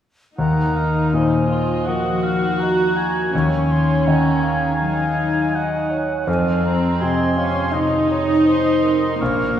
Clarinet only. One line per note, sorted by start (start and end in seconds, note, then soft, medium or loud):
0.39 1.18 A#4 soft
1.16 1.91 C5 soft
1.89 2.64 A#4 soft
2.63 3.35 D#5 soft
3.35 4.09 C#5 soft
4.08 4.42 F#5 soft
4.43 5.56 F5 soft
5.54 5.92 D#5 soft
5.90 6.27 C#5 soft
6.27 6.74 C5 soft
7.00 7.39 D#5 soft
7.38 7.74 F5 soft
7.72 8.10 D#5 soft
8.11 8.47 C#5 soft
8.45 8.85 C5 soft
8.83 9.60 A#4 soft